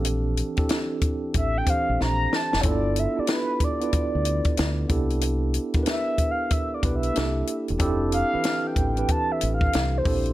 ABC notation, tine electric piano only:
X:1
M:4/4
L:1/16
Q:"Swing 16ths" 1/4=93
K:C
V:1 name="Tine electric piano"
[E,CDGA]3 [CDEGA]6- [CDEGA] [E,CDGc]6 | [_B,=B,DEFA]3 [B,DEFG]4 [B,DEFB]6- [B,DEFB] [B,DEGA]2- | [B,DEGA]3 [B,DEG_B=B]6- [B,DEG_B=B] [B,DEGB]2 [_B,DEGA]4 | [CDEGA]3 [E,CDGB]4 [E,CDGB]6- [E,CDGB] [CDEGA]2 |]